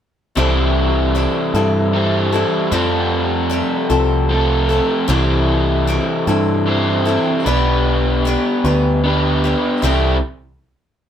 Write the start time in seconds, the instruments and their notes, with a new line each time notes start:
0.35 picked electric bass C2, steel-string acoustic guitar C3 E3 G3 C4 E4 A4, overdriven electric guitar C3 E3 G3 C4 E4 C5
1.15 steel-string acoustic guitar G3 C4 E4 A4
1.54 picked electric bass G2, steel-string acoustic guitar C3 E3 G3 C4 E4 A4
1.93 overdriven electric guitar C3 E3 G3 C4 E4 C5
2.32 steel-string acoustic guitar G3 C4 E4 A4
2.71 picked electric bass F2, overdriven electric guitar F3 A3 C4 F4 A4, steel-string acoustic guitar F3 G3 C4 G4 A4
3.50 steel-string acoustic guitar G3 C4 G4 A4
3.90 picked electric bass C2, steel-string acoustic guitar F3 G3 C4 G4 A4
4.29 overdriven electric guitar F3 A3 C4 F4 A4
4.69 steel-string acoustic guitar C4 G4 A4
5.08 picked electric bass C2, steel-string acoustic guitar C3 E3 G3 C4 E4 A4, overdriven electric guitar C3 E3 G3 C4 E4 C5
5.87 steel-string acoustic guitar G3 C4 E4 A4
6.27 picked electric bass G2, steel-string acoustic guitar C3 E3 G3 C4 E4 A4
6.66 overdriven electric guitar C3 E3 G3 C4 E4 C5
7.05 steel-string acoustic guitar G3 C4 E4 A4
7.45 picked electric bass B1, overdriven electric guitar B3 D4 G4 B4, steel-string acoustic guitar B3 D4 G4 B4
8.25 steel-string acoustic guitar B3 D4 G4 B4
8.64 picked electric bass D2, steel-string acoustic guitar B3 D4 G4 B4
9.04 overdriven electric guitar B3 D4 G4 B4
9.44 steel-string acoustic guitar D4 G4 B4
9.82 picked electric bass C2, steel-string acoustic guitar C3 E3 G3 C4 G4 A4, overdriven electric guitar C3 E3 G3 C4 E4